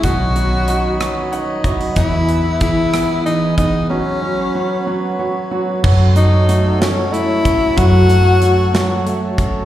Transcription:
Already playing: G#4 C#5
0.02 B1 B2 D#3 F#4 D#5 B5, kick, closed hi-hat
0.36 F#3 C#4, closed hi-hat
0.68 D#4 F#4, closed hi-hat
1.00 F#3 B3, cross-stick, closed hi-hat
1.32 C#4 D#4 F#5, closed hi-hat
1.64 F#3 E4 D#5, kick, closed hi-hat
1.81 F#4
1.96 E2 E3 E4 G#4 B4 G#5, kick, closed hi-hat
2.29 B3 E4, closed hi-hat
2.61 E3 E4 G#4, kick, closed hi-hat
2.93 B3, cross-stick, closed hi-hat
3.26 E3 D#4, closed hi-hat
3.58 B3 D#4 G#4, kick, closed hi-hat
3.89 F#3 C#4 F#4 C#5
4.22 F#3 C#4
4.55 F#3 F#4
4.87 F#3 B3
5.19 F#3 C#4
5.51 F#3 F#4
5.83 F#2 F#3 F#4 A4 C#5 A5, kick, crash
6.16 F#3 D#4, closed hi-hat
6.48 F#3 A3, closed hi-hat
6.80 F#3 C#4, snare, closed hi-hat
7.13 A3 E4, closed hi-hat
7.45 C#4, kick, closed hi-hat
7.77 F#2 F#3 F#4, kick, closed hi-hat
8.09 F#3, closed hi-hat
8.42 F#3 A3, closed hi-hat
8.74 F#3, snare, closed hi-hat
9.06 A3, closed hi-hat
9.38 C#4, kick, closed hi-hat

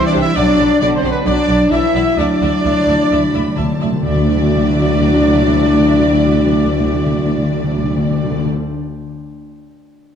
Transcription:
Already playing: E3 G3 C4
0.05 D4 D5
0.13 C2 G4 C5 E5 G5
0.20 E4 E5
0.36 B1 F#3 D4 D5 F#5 B5
0.59 B1 D5 F#5 B5
0.81 B1 D3 D4 D5 F#5 B5
0.95 C4 C5
1.03 B1 D5 F#5 B5
1.11 B3 B4
1.24 B1 F#3 D4 D5 F#5 B5
1.48 B1 D5 F#5 B5
1.70 B1 E3 E4 D5 E5 F#5 B5
1.93 B1 D5 F#5 B5
2.17 D2 D3 F#3 D4 E4 D5 E5 F#5 A5
2.27 D3
2.35 D3
2.41 D2 D3 D5 E5 F#5 A5
2.51 D3
2.64 D2 D3 D5 E5 A5
2.73 D3
2.80 D3
2.86 D2 D3 D5 E5
2.95 D3
3.02 D3
3.10 D2 D5 E5 B5
3.18 D3
3.24 D3
3.32 D2 D3 D5 E5
3.39 D3
3.48 D3
3.56 D2 D3 D5 E5 A5
3.63 D3
3.70 D3
3.78 D2 D3 D5 E5
3.85 D3
3.92 D3
4.02 D2 D3 F#3 D4 E4 F#4 D5 E5
4.09 D3
4.15 D3
4.22 D3
4.28 D3
4.35 D3
4.42 D3
4.49 D3
4.56 D3
4.62 D3
4.68 D3
4.75 D3
4.82 D3
4.88 D3
4.94 D3
5.01 D3
5.07 D3
5.14 D3
5.21 D3
5.28 D3
5.34 D3
5.41 D3
5.47 D3
5.53 D3
5.60 D3
5.66 D3
5.73 D3
5.80 D3
5.86 D3
5.93 D3
6.00 D3
6.06 D3
6.13 D3
6.20 D3
6.26 D3
6.33 D3
6.39 D3
6.45 D3
6.52 D3
6.59 D3
6.65 D3
6.73 D3
6.80 D3
6.87 D3
6.93 D3
7.00 D3
7.06 D3
7.12 D3
7.19 D3
7.25 D3
7.32 D3
7.38 D3
7.45 D3
7.51 D3
7.57 D3
7.64 D3
7.70 D3
7.77 D3
7.84 D3
7.90 D3
7.97 D3
8.04 D3
8.11 D3
8.18 D3
8.25 D3
8.31 D3
8.38 D3
8.45 D3
8.52 D3

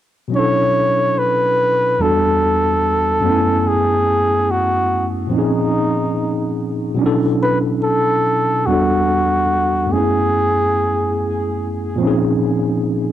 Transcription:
0.28 B2 F#3
0.32 C#4 D4 C#5
0.37 E4 A4
1.19 B4
1.99 E2 G3 B3 D4 A4
2.04 F#4 A4
3.21 F#2 A3
3.25 B3 C#4
3.30 E4 G#5
3.68 G#4
4.51 F#4
5.27 A#2 F3
5.31 C4 C#4 D#4
5.36 D#4 G#4
6.94 B2 F#3
6.99 C#4 D4
7.04 E4 A4
7.43 B4
7.84 A4
8.66 E2 G3 B3 D4 F#4
8.71 F#4 A4
9.87 F#2 A3
9.91 B3 C#4 G#4
9.96 E4 G#4
11.96 A#2 F3
12.00 C4 C#4
12.05 D#4 G#4

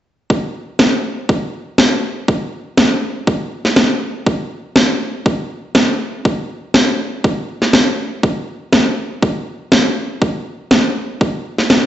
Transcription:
0.30 kick
0.79 kick, snare
1.29 kick
1.78 kick, snare
2.28 kick
2.77 kick, snare
3.27 kick
3.65 snare
3.76 kick, snare
4.26 kick
4.76 kick, snare
5.26 kick
5.75 kick, snare
6.25 kick
6.74 kick, snare
7.24 kick
7.62 snare
7.73 kick, snare
8.23 kick
8.73 kick, snare
9.22 kick
9.72 kick, snare
10.22 kick
10.71 kick, snare
11.21 kick
11.58 snare
11.70 kick, snare

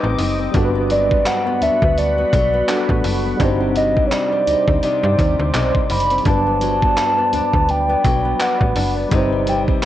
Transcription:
Already playing: G3 C4 D#4 B4 D#5 D6, downlifter
0.03 A1 C4
0.18 F#1 D#4, open hi-hat
0.39 C4
0.51 G1 G2 G3 B3 D4 F#4 F#5 B5, kick, closed hi-hat
0.56 F#4 A4
0.65 B4
0.75 B3
0.90 F#3 D5, closed hi-hat
1.11 B3, kick
1.26 D4 F#5, clap, closed hi-hat
1.47 B3
1.61 D2 D4 E5, closed hi-hat
1.82 D2 B3, kick
1.98 D4 D5, closed hi-hat
2.18 B3
2.33 B1 F#3, kick, closed hi-hat
2.54 B3
2.67 G3 B3 D4 F#4 A4, clap, closed hi-hat
2.89 A1 B3, kick
3.04 F#1 D4, open hi-hat
3.25 B3
3.37 G1 C3 G3 C4 D4 D#4 C5 D5 D6, kick, closed hi-hat
3.43 D#4 C5
3.61 C4
3.76 G3 D#5, closed hi-hat
3.96 C4, kick
4.07 C#5
4.11 D#4 D5, clap, closed hi-hat
4.32 C4
4.47 D2 D#4, closed hi-hat
4.68 D2 C4, kick
4.83 C3 D#4 D5, closed hi-hat
5.03 G2 C4
5.19 D#2 G3, kick, closed hi-hat
5.39 D2 C4
5.54 B1 D#4, clap, closed hi-hat
5.75 C4, kick
5.90 F#1 D#4 B5, closed hi-hat, open hi-hat
6.00 closed hi-hat
6.10 C4, closed hi-hat
6.18 closed hi-hat
6.23 G1 G2 G3 B3 D4 B4 D5 B5, kick, closed hi-hat
6.27 F#3 B4 A5
6.46 B3
6.61 F#3, closed hi-hat
6.82 B3, kick
6.97 D4, clap, closed hi-hat
7.18 B3
7.33 D2 D4, closed hi-hat
7.53 D2 B3, kick
7.69 D4 G5, closed hi-hat
7.89 B3
8.04 B1 F#3, kick, closed hi-hat
8.25 B3
8.40 D4 F#5, clap, closed hi-hat
8.61 A1 B3, kick
8.76 F#1 D4, open hi-hat
8.96 B3
9.09 G1 C3 G3 C4 D#4 C5 G5 D6, kick, closed hi-hat
9.14 D#4 C5
9.32 C4
9.47 G3 G5, closed hi-hat
9.68 C4, kick

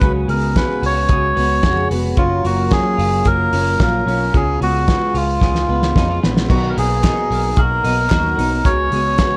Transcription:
Already playing: F#3 B3
0.00 C#2 C#3 G#3 B3 F#4 B4, kick, closed hi-hat
0.28 C#2 G#3 B3 F#4 A#4, open hi-hat
0.32 G#3
0.56 C#3 G#3 B3 F#4 B4, kick, snare, closed hi-hat
0.82 C#2 F#4 C#5, open hi-hat
1.09 C#2 C#3 G#3 B3, kick, closed hi-hat
1.13 F#4
1.36 C#2 G#3 B3 F#4, open hi-hat
1.63 F2 C#3 G#3 B3 F#4, kick, snare, closed hi-hat
1.90 F1 G#3 B3 F#4, open hi-hat
2.16 F#1 F#3 A#3 C#4 F4, kick, closed hi-hat
2.44 F#1 A#3 C#4 F4 F#4, open hi-hat
2.71 F#3 A#3 C#4 F4 G#4, kick, snare, closed hi-hat
2.97 F#1 F4, open hi-hat
3.25 F#1 F#3 A#3 C#4 F4 A#4, kick, closed hi-hat
3.52 F#1 A#3 C#4 F4, open hi-hat
3.79 A#1 F#3 A#3 C#4 F4 A#4, kick, snare, closed hi-hat
4.06 B1 A#3 C#4 F4, open hi-hat
4.32 C#2 C#3 G#3 B3 F4 G#4, kick, closed hi-hat
4.60 C#2 G#3 B3 F4 F#4, open hi-hat
4.87 C#3 G#3 B3 F4, kick, snare, closed hi-hat
5.15 C#2 F4, open hi-hat
5.41 C#2 C#3 G#3 B3 F4, kick, snare
5.55 snare
5.68 C#2 G#3 B3 F4
5.82 snare
5.95 F2 C#3 G#3 B3 D#4 F4, kick, snare
6.10 F4
6.22 A#1 G#3 B3 F4, snare
6.37 snare
6.48 B1 B2 D#3 F#3 B3 D#4 F#4 A#4, kick, crash
6.69 A#4
6.75 B1 F#3 A#3 B3 D#4 G#4 A#4, open hi-hat
7.03 F#3 B3 D#4 A#4, kick, snare, clap, closed hi-hat
7.31 B1 A#3, open hi-hat
7.56 B1 F#4 A#4, kick, closed hi-hat
7.84 B1 F#3 B3 D#4 A#4, open hi-hat
8.10 D#2 F#3 B3 D#4 F#4 A#4, kick, snare, clap, closed hi-hat
8.37 B1 F#3 B3 D#4 A#4, open hi-hat
8.63 C#2 C#3 G#3 B3 F#4 C#5, kick, closed hi-hat
8.91 C#2 G#3 B3 F#4, open hi-hat
9.17 C#3 G#3 B3 F#4, kick, snare, clap, closed hi-hat

